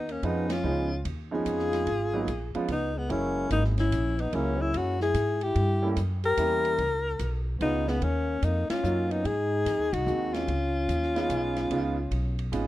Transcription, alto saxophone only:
0.00 0.13 D#4 medium
0.11 0.26 C#4 medium
0.24 0.51 D#4 medium
0.52 1.02 F4 medium
1.35 2.52 G#4 loud
2.72 2.99 D#4 medium
2.98 3.13 B3 medium
3.11 3.52 C#4 loud
3.52 3.64 D#4 medium
3.80 4.22 E4 medium
4.21 4.36 D#4 medium
4.35 4.63 C#4 medium
4.62 4.79 E4 medium
4.77 5.02 F#4 medium
5.03 5.44 G#4 loud
5.43 5.97 G4 loud
6.25 7.44 A#4 loud
7.62 7.90 D#4 loud
7.89 8.05 B3 medium
8.03 8.45 C#4 loud
8.44 8.69 D#4 medium
8.70 9.13 F4 loud
9.11 9.27 D#4 medium
9.26 9.94 G#4 loud
9.93 10.35 F#4 loud
10.34 12.53 F4 loud

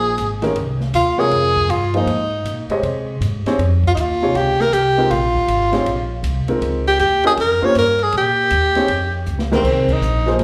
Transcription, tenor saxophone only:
0.00 0.43 G#4 loud
0.95 1.21 F4 medium
1.20 1.72 G#4 loud
1.70 1.94 F4 medium
1.97 2.67 D#4 medium
3.87 3.90 F4 medium
3.95 4.02 D#4 medium
4.00 4.38 F4 medium
4.37 4.63 G4 loud
4.61 4.75 A#4 medium
4.73 5.12 G4 loud
5.11 6.24 F4 medium
6.88 6.99 G4 loud
7.00 7.23 G4 loud
7.27 7.32 G#4 loud
7.40 7.66 A#4 loud
7.65 7.77 C#5 loud
7.78 8.05 A#4 loud
8.03 8.15 G#4 medium
8.17 9.24 G4 loud
9.55 9.94 C4 medium
9.92 10.41 D#4 medium

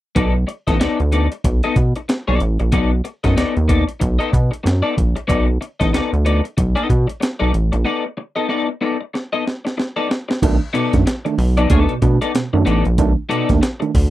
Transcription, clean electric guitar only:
0.15 0.34 B3 medium
0.15 0.34 D#4 medium
0.15 0.34 A4 medium
0.15 0.33 D5 medium
0.34 muted clean electric guitar stroke soft
0.47 muted clean electric guitar stroke soft
0.67 0.77 B3 soft
0.67 0.77 D#4 soft
0.67 0.77 A4 medium
0.67 0.77 D#5 soft
0.80 0.98 B3 medium
0.80 0.98 D#4 medium
0.80 0.99 A4 medium
0.80 0.99 D5 medium
1.00 muted clean electric guitar stroke soft
1.12 1.26 B3 medium
1.12 1.27 D#4 medium
1.12 1.27 A4 medium
1.12 1.27 D5 medium
1.32 muted clean electric guitar stroke soft
1.45 muted clean electric guitar stroke medium
1.64 1.76 B3 medium
1.64 1.76 D#4 medium
1.64 1.76 A4 medium
1.64 1.76 D#5 medium
1.77 muted clean electric guitar stroke soft
1.96 muted clean electric guitar stroke soft
2.09 muted clean electric guitar stroke soft
2.28 2.39 B3 medium
2.28 2.40 D#4 medium
2.28 2.40 A4 medium
2.28 2.40 D5 medium
2.41 muted clean electric guitar stroke soft
2.60 muted clean electric guitar stroke soft
2.72 2.91 B3 medium
2.72 2.91 D#4 medium
2.72 2.91 A4 medium
2.72 2.90 D5 medium
2.91 muted clean electric guitar stroke soft
3.04 muted clean electric guitar stroke soft
3.24 3.34 B3 soft
3.24 3.34 D#4 medium
3.24 3.34 A4 medium
3.24 3.33 D#5 medium
3.36 3.55 B3 medium
3.36 3.55 D#4 medium
3.36 3.55 A4 medium
3.36 3.54 D5 medium
3.55 muted clean electric guitar stroke soft
3.68 3.83 B3 medium
3.68 3.83 D#4 medium
3.68 3.83 A4 medium
3.68 3.83 D5 medium
3.88 muted clean electric guitar stroke soft
4.00 muted clean electric guitar stroke soft
4.19 4.30 B3 medium
4.19 4.31 D#4 medium
4.19 4.31 A4 medium
4.19 4.32 D#5 medium
4.32 muted clean electric guitar stroke soft
4.51 muted clean electric guitar stroke soft
4.63 muted clean electric guitar stroke soft
4.83 4.95 B3 medium
4.83 4.95 D#4 medium
4.83 4.95 A4 medium
4.83 4.96 D5 medium
4.96 muted clean electric guitar stroke soft
5.16 muted clean electric guitar stroke soft
5.28 5.47 B3 medium
5.28 5.47 D#4 medium
5.28 5.46 A4 medium
5.28 5.46 D5 medium
5.47 muted clean electric guitar stroke soft
5.61 muted clean electric guitar stroke soft
5.80 5.90 B3 medium
5.80 5.90 D#4 soft
5.80 5.90 A4 soft
5.80 5.90 D#5 medium
5.93 6.12 B3 medium
5.93 6.12 D#4 medium
5.93 6.11 A4 medium
5.93 6.11 D5 medium
6.12 muted clean electric guitar stroke soft
6.25 6.40 B3 medium
6.25 6.40 D#4 medium
6.25 6.40 A4 medium
6.25 6.40 D5 medium
6.44 muted clean electric guitar stroke soft
6.57 muted clean electric guitar stroke soft
6.75 6.88 B3 medium
6.75 6.88 D#4 medium
6.75 6.88 A4 medium
6.75 6.89 D#5 medium
6.89 muted clean electric guitar stroke soft
7.07 muted clean electric guitar stroke soft
7.20 muted clean electric guitar stroke soft
7.39 7.51 B3 medium
7.39 7.51 D#4 medium
7.39 7.52 A4 medium
7.39 7.52 D5 medium
7.53 muted clean electric guitar stroke soft
7.72 muted clean electric guitar stroke soft
7.85 8.04 B3 medium
7.85 8.04 D#4 medium
7.85 8.04 A4 medium
7.85 8.03 D5 medium
8.05 muted clean electric guitar stroke soft
8.17 muted clean electric guitar stroke soft
8.36 8.47 B3 soft
8.36 8.46 D#4 soft
8.36 8.46 A4 medium
8.36 8.46 D#5 medium
8.49 8.67 B3 medium
8.49 8.68 D#4 medium
8.49 8.68 A4 medium
8.49 8.67 D5 medium
8.68 muted clean electric guitar stroke soft
8.81 8.96 B3 medium
8.81 8.96 D#4 medium
8.81 8.96 A4 medium
8.81 8.96 D5 medium
9.01 muted clean electric guitar stroke soft
9.14 muted clean electric guitar stroke soft
9.33 9.44 B3 medium
9.33 9.45 D#4 medium
9.33 9.45 A4 medium
9.33 9.45 D#5 medium
9.45 muted clean electric guitar stroke soft
9.65 muted clean electric guitar stroke soft
9.77 muted clean electric guitar stroke soft
9.96 10.08 B3 medium
9.96 10.09 D#4 medium
9.96 10.09 A4 medium
9.96 10.09 D5 medium
10.09 muted clean electric guitar stroke soft
10.29 muted clean electric guitar stroke medium
10.73 10.92 B3 medium
10.73 10.92 D#4 medium
10.73 10.92 A4 medium
10.73 10.92 D5 medium
11.06 muted clean electric guitar stroke soft
11.25 muted clean electric guitar stroke soft
11.57 11.69 B3 medium
11.57 11.69 D#4 medium
11.57 11.69 A4 medium
11.57 11.70 D5 medium
11.70 11.92 B3 medium
11.70 11.93 D#4 medium
11.70 11.93 A4 loud
11.70 11.93 D5 medium
12.02 muted clean electric guitar stroke soft
12.21 12.31 B3 medium
12.21 12.31 D#4 medium
12.21 12.31 A4 medium
12.21 12.31 D5 medium
12.53 muted clean electric guitar stroke soft
12.65 12.84 B3 medium
12.65 12.84 D#4 medium
12.65 12.84 A4 medium
12.65 12.84 D5 medium
12.85 muted clean electric guitar stroke soft
13.29 13.48 B3 medium
13.29 13.48 D#4 medium
13.29 13.48 A4 loud
13.29 13.48 D5 medium
13.61 muted clean electric guitar stroke soft
13.80 muted clean electric guitar stroke soft

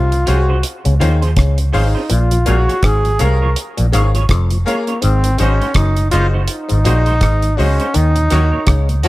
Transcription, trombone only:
0.00 0.29 F4 loud
0.27 0.64 F#4 loud
1.77 2.15 D#4 medium
2.13 2.50 F4 loud
2.49 2.87 F#4 loud
2.85 3.23 G#4 loud
3.22 3.57 A#4 loud
4.66 5.03 A#3 medium
5.02 5.41 C4 loud
5.39 5.77 C#4 loud
5.76 6.11 D#4 loud
6.12 6.28 F4 loud
6.49 7.60 D#4 loud
7.59 7.97 C#4 loud
7.96 8.79 D#4 loud

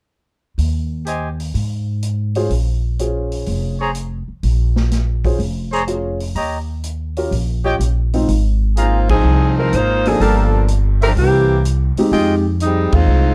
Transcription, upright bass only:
0.58 1.50 D#2 medium
1.54 2.47 G#2 medium
2.50 3.42 A#1 medium
3.47 4.24 F1 medium
4.28 muted upright bass stroke soft
4.43 5.35 A#1 medium
5.39 6.31 F1 medium
6.35 7.28 D#2 medium
7.31 7.76 A#1 medium
7.79 8.24 A#1 medium
8.28 9.20 G#1 medium
9.24 9.69 C2 medium
9.72 10.17 G#1 medium
10.20 11.12 G1 medium
11.16 11.93 C2 medium
11.97 muted upright bass stroke soft
12.12 12.89 F2 medium
12.93 13.06 D#2 medium
13.07 13.35 C2 medium

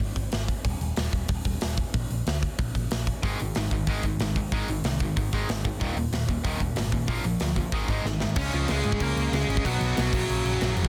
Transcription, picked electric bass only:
0.16 0.26 G#1 medium
0.33 0.52 G#1 medium
0.64 0.74 D#1 medium
0.81 0.91 D#1 medium
0.98 1.07 D#1 medium
1.13 1.23 D#1 medium
1.29 1.39 D#1 medium
1.45 1.55 D#1 medium
1.63 1.82 D#1 medium
1.94 2.04 A#1 medium
2.10 2.20 A#1 medium
2.26 2.46 D2 medium
2.59 2.69 A#1 medium
2.75 2.85 A#1 medium
2.92 3.11 A#1 medium
3.24 3.33 G#1 medium
3.42 3.51 G#1 medium
3.56 3.66 G#1 medium
3.71 3.81 G#1 medium
3.88 3.97 G#1 medium
4.04 4.14 G#1 medium
4.20 4.39 G#1 medium
4.52 4.62 G#1 medium
4.69 4.78 G#1 medium
4.84 5.03 C2 medium
5.17 5.27 G#1 medium
5.33 5.43 G#1 medium
5.49 5.68 G#1 medium
5.81 5.91 D#1 medium
5.96 6.06 D#1 medium
6.12 6.22 D#1 medium
6.29 6.38 D#1 medium
6.45 6.54 D#1 medium
6.60 6.70 D#1 medium
6.76 6.96 G#1 medium
7.08 7.18 A#1 medium
7.25 7.34 A#1 medium
7.41 7.60 D2 medium
7.72 7.82 G#1 medium
7.89 7.98 G#1 medium
8.04 8.24 G#1 medium
8.37 8.48 C#2 medium
8.53 8.64 C#2 medium
8.70 8.81 C#2 medium
8.85 8.96 G#2 medium
9.01 9.12 C#2 loud
9.16 9.28 C#2 medium
9.32 9.43 C#2 medium
9.48 9.59 G#1 medium
9.65 9.76 B1 loud
9.81 9.92 B1 loud
9.97 10.08 B1 medium
10.13 10.24 A#1 medium
10.30 10.41 A#1 loud
10.45 10.56 A#1 medium
10.61 10.72 A#1 medium
10.77 10.88 F1 loud

